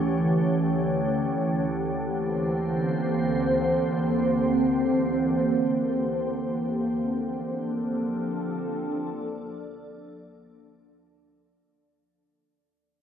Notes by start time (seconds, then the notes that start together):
Already playing: D2 D3 E3 A3 C#4 G4 C#5
1.76 A#3
1.90 C5
2.01 C4
6.88 D4
7.07 F3
7.37 A4
8.34 D5